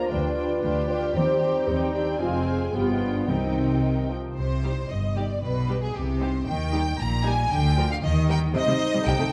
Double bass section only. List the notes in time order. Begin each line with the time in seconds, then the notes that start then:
0.12 D2
0.64 D2
1.16 D#2
1.68 D#2
2.22 F1
2.75 G1
3.29 C2
4.38 C2
4.91 G1
5.43 B1
5.96 C2
6.47 D#2
6.99 A#1
7.51 D2
8.03 D#2
8.55 C2
9.07 C2